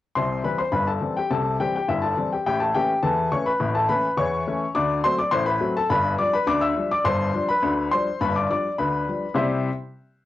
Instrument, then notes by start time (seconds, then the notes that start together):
upright piano
0.16 C2 C3 C5 C6
0.44 E3 G3 C4 B4 B5
0.59 C5 C6
0.72 G1 G2 B4 B5
0.87 A4 A5
1.01 E3 G3 C4
1.17 G4 G5
1.30 C2 C3 A4 A5
1.60 E3 G3 C4 G4 G5
1.75 G4 G5
1.88 G1 G2 E4 E5
2.02 A4 A5
2.17 E3 G3 C4
2.32 G4 G5
2.46 A1 A2 G4 G5
2.60 A4 A5
2.75 E3 A3 C#4 G4 G5
3.03 E2 E3 A4 A5
3.32 E3 A3 C#4 C#5 C#6
3.46 B4 B5
3.60 A1 A2
3.75 A4 A5
3.89 E3 A3 C#4 B4 B5
4.17 E2 E3 C#5 C#6
4.47 E3 A3 C#4
4.75 D2 D3 D5 D6
5.04 F#3 A3 C4 C5 C6
5.19 D5 D6
5.31 A1 A2 C5 C6
5.46 B4 B5
5.60 F#3 A3 C4
5.77 A4 A5
5.90 G1 G2 B4 B5
6.18 F3 G3 D4 D5 D6
6.33 B4 B5
6.47 D2 D3 D5 D6
6.61 E5 E6
6.76 F3 G3 D4
6.91 D5 D6
7.04 G1 G2 C5 C6
7.35 F3 G3 D4
7.49 B4 B5
7.62 D2 D3
7.91 F3 G3 D4 C5 C6
8.21 G1 G2 B4 B5
8.36 D5 D6
8.50 F3 G3 D4 D5 D6
8.78 D2 D3 B4 B5
9.08 F3 G3 D4
9.34 C3 G3 E4 G4 C5 E5 C6